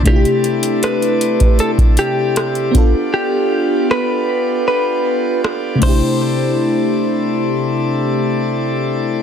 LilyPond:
<<
  \new Staff \with { instrumentName = "Clean electric guitar" } { \time 4/4 \key c \major \tempo 4 = 78 g'4 b'4 a'8 g'4 r8 | g'4 b'4 b'4 r8 c''8~ | c''1 | }
  \new Staff \with { instrumentName = "Pipe organ" } { \time 4/4 \key c \major << { d''1~ | d''2.~ d''8 <c' e' a' d''>8~ | <c' e' a' d''>1 | } \\ { <c' e' a'>2.~ <c' e' a'>8 <b f' g'>8~ | <b f' g'>2.~ <b f' g'>8 r8 | r1 | } >> }
  \new Staff \with { instrumentName = "FM electric piano" } { \time 4/4 \key c \major <c a d' e' f' g'>2.~ <c a d' e' f' g'>8 <b d' f' a'>8~ | <b d' f' a'>2.~ <b d' f' a'>8 <c a d' e' g'>8~ | <c a d' e' g'>1 | }
  \new DrumStaff \with { instrumentName = "Drums" } \drummode { \time 4/4 <hh bd>16 hh16 hh16 hh16 <hh ss>16 hh16 hh16 <hh bd>16 hh16 <hh bd>16 hh8 <hh ss>16 hh16 <hh bd>8 | r4 ss4 r4 ss8 <cymc bd>8 | r4 r4 r4 r4 | }
>>